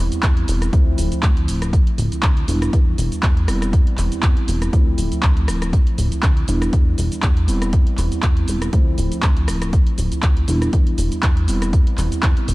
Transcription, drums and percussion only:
0.12 closed hi-hat medium
0.12 shaker soft
0.23 kick loud
0.23 clap loud
0.23 closed hi-hat medium
0.23 shaker soft
0.37 closed hi-hat soft
0.48 open hi-hat loud
0.48 shaker medium
0.62 cross-stick medium
0.62 closed hi-hat medium
0.62 shaker soft
0.73 kick loud
0.73 closed hi-hat medium
0.73 shaker soft
0.98 open hi-hat loud
0.98 shaker medium
1.12 closed hi-hat medium
1.12 shaker soft
1.23 kick loud
1.23 clap loud
1.23 closed hi-hat medium
1.23 shaker soft
1.37 closed hi-hat soft
1.48 open hi-hat loud
1.48 shaker medium
1.62 cross-stick medium
1.62 closed hi-hat medium
1.62 shaker soft
1.73 kick loud
1.73 closed hi-hat medium
1.73 shaker soft
1.87 closed hi-hat soft
1.98 open hi-hat loud
1.98 shaker medium
2.12 closed hi-hat medium
2.12 shaker soft
2.23 kick loud
2.23 clap loud
2.23 closed hi-hat medium
2.23 shaker soft
2.37 closed hi-hat soft
2.48 open hi-hat loud
2.48 shaker medium
2.62 cross-stick medium
2.62 closed hi-hat soft
2.62 shaker soft
2.73 kick loud
2.73 closed hi-hat medium
2.73 shaker soft
2.98 open hi-hat loud
2.98 shaker medium
3.12 closed hi-hat soft
3.12 shaker soft
3.23 kick loud
3.23 clap loud
3.23 closed hi-hat medium
3.23 shaker soft
3.37 closed hi-hat soft
3.48 cross-stick medium
3.48 open hi-hat loud
3.48 shaker medium
3.62 cross-stick medium
3.62 closed hi-hat medium
3.62 shaker soft
3.73 kick loud
3.73 closed hi-hat medium
3.73 shaker soft
3.87 closed hi-hat soft
3.98 clap soft
3.98 open hi-hat loud
3.98 shaker medium
4.12 closed hi-hat medium
4.12 shaker soft
4.23 kick loud
4.23 clap loud
4.23 closed hi-hat medium
4.23 shaker soft
4.37 closed hi-hat soft
4.48 open hi-hat loud
4.48 shaker medium
4.62 cross-stick medium
4.62 closed hi-hat soft
4.62 shaker soft
4.73 kick loud
4.73 closed hi-hat medium
4.73 shaker soft
4.98 open hi-hat loud
4.98 shaker medium
5.12 closed hi-hat medium
5.12 shaker soft
5.23 kick loud
5.23 clap loud
5.23 closed hi-hat medium
5.23 shaker soft
5.37 closed hi-hat soft
5.48 cross-stick medium
5.48 open hi-hat medium
5.48 shaker medium
5.62 cross-stick medium
5.62 closed hi-hat medium
5.62 shaker soft
5.73 kick loud
5.73 closed hi-hat medium
5.73 shaker soft
5.87 closed hi-hat soft
5.98 open hi-hat loud
5.98 shaker medium
6.12 closed hi-hat soft
6.12 shaker soft
6.23 kick loud
6.23 clap loud
6.23 closed hi-hat medium
6.23 shaker soft
6.37 closed hi-hat soft
6.48 open hi-hat medium
6.48 shaker medium
6.62 cross-stick medium
6.62 closed hi-hat soft
6.62 shaker soft
6.73 kick loud
6.73 closed hi-hat medium
6.73 shaker soft
6.98 open hi-hat loud
6.98 shaker medium
7.12 closed hi-hat medium
7.12 shaker soft
7.22 kick loud
7.22 clap loud
7.22 closed hi-hat medium
7.22 shaker soft
7.37 closed hi-hat soft
7.48 open hi-hat medium
7.48 shaker medium
7.62 cross-stick medium
7.62 closed hi-hat medium
7.62 shaker soft
7.73 kick loud
7.73 closed hi-hat medium
7.73 shaker soft
7.87 closed hi-hat soft
7.98 clap soft
7.98 open hi-hat loud
7.98 shaker medium
8.12 closed hi-hat medium
8.12 shaker soft
8.23 kick loud
8.23 clap loud
8.23 closed hi-hat medium
8.23 shaker soft
8.37 closed hi-hat soft
8.48 open hi-hat medium
8.48 shaker medium
8.62 cross-stick medium
8.62 closed hi-hat medium
8.62 shaker soft
8.73 kick loud
8.73 closed hi-hat medium
8.73 shaker soft
8.98 open hi-hat loud
8.98 shaker medium
9.12 closed hi-hat medium
9.12 shaker soft
9.23 kick loud
9.23 clap loud
9.23 closed hi-hat medium
9.23 shaker soft
9.37 closed hi-hat soft
9.48 cross-stick medium
9.48 open hi-hat medium
9.48 shaker medium
9.62 cross-stick medium
9.62 closed hi-hat medium
9.62 shaker soft
9.73 kick loud
9.73 closed hi-hat medium
9.73 shaker soft
9.87 closed hi-hat soft
9.98 open hi-hat loud
9.98 shaker medium
10.12 closed hi-hat medium
10.12 shaker soft
10.23 kick loud
10.23 clap loud
10.23 closed hi-hat medium
10.23 shaker soft
10.37 closed hi-hat soft
10.48 open hi-hat medium
10.48 shaker medium
10.62 cross-stick medium
10.62 closed hi-hat medium
10.62 shaker soft
10.73 kick loud
10.73 closed hi-hat medium
10.73 shaker soft
10.87 closed hi-hat soft
10.98 open hi-hat loud
10.98 shaker medium
11.12 closed hi-hat medium
11.12 shaker soft
11.23 kick loud
11.23 clap loud
11.23 closed hi-hat medium
11.23 shaker soft
11.37 closed hi-hat soft
11.48 open hi-hat medium
11.48 shaker medium
11.62 cross-stick medium
11.62 closed hi-hat medium
11.62 shaker soft
11.73 kick loud
11.73 closed hi-hat medium
11.73 shaker soft
11.87 closed hi-hat soft
11.98 clap soft
11.98 open hi-hat loud
11.98 shaker medium
12.12 closed hi-hat medium
12.12 shaker soft
12.23 kick loud
12.23 clap loud
12.23 closed hi-hat medium
12.23 shaker soft
12.37 closed hi-hat soft
12.48 open hi-hat loud
12.48 shaker medium

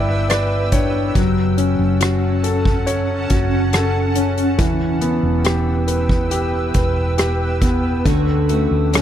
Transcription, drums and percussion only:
0.30 cross-stick medium
0.30 closed hi-hat medium
0.72 kick medium
0.72 closed hi-hat medium
1.15 kick medium
1.15 closed hi-hat medium
1.58 closed hi-hat medium
2.01 cross-stick medium
2.01 closed hi-hat medium
2.44 closed hi-hat medium
2.65 kick medium
2.87 closed hi-hat medium
3.30 kick medium
3.30 closed hi-hat medium
3.73 cross-stick medium
3.73 closed hi-hat medium
4.15 closed hi-hat medium
4.38 closed hi-hat soft
4.59 kick medium
4.59 closed hi-hat medium
5.01 closed hi-hat medium
5.45 cross-stick medium
5.45 closed hi-hat medium
5.88 closed hi-hat medium
6.09 kick medium
6.31 closed hi-hat medium
6.74 kick medium
6.74 closed hi-hat medium
7.18 cross-stick medium
7.18 closed hi-hat medium
7.62 kick medium
7.62 closed hi-hat medium
8.06 kick loud
8.06 closed hi-hat medium
8.49 closed hi-hat medium
8.93 cross-stick medium
8.93 closed hi-hat medium

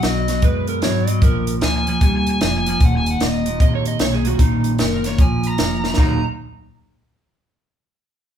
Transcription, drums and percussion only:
0.03 snare loud
0.03 closed hi-hat medium
0.28 snare soft
0.28 closed hi-hat medium
0.42 kick loud
0.42 closed hi-hat medium
0.67 closed hi-hat medium
0.82 snare loud
0.82 closed hi-hat medium
1.07 closed hi-hat medium
1.22 kick loud
1.22 closed hi-hat medium
1.47 closed hi-hat medium
1.61 snare loud
1.61 closed hi-hat medium
1.87 closed hi-hat medium
2.01 kick loud
2.01 closed hi-hat medium
2.27 closed hi-hat medium
2.41 snare loud
2.41 closed hi-hat medium
2.66 closed hi-hat medium
2.80 kick loud
2.80 closed hi-hat medium
3.06 closed hi-hat medium
3.20 snare medium
3.20 closed hi-hat medium
3.46 closed hi-hat medium
3.60 kick loud
3.60 closed hi-hat medium
3.85 closed hi-hat medium
3.99 snare loud
3.99 closed hi-hat medium
4.25 closed hi-hat medium
4.39 kick loud
4.39 closed hi-hat medium
4.64 closed hi-hat medium
4.79 snare loud
4.79 closed hi-hat medium
5.04 snare soft
5.04 closed hi-hat medium
5.18 kick loud
5.18 closed hi-hat medium
5.43 closed hi-hat medium
5.58 snare loud
5.58 closed hi-hat medium
5.84 snare medium
5.94 snare medium
5.98 kick loud

